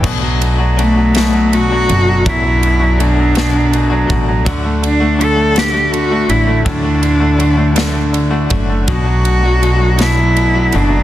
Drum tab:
CC |x-----|------|------|------|
RD |-xxxxx|xxxxxx|xxxxxx|xxxxxx|
SD |---o--|---o--|---o--|---o--|
BD |o-----|o----o|o-----|o----o|

CC |------|
RD |xxxxxx|
SD |---o--|
BD |o-----|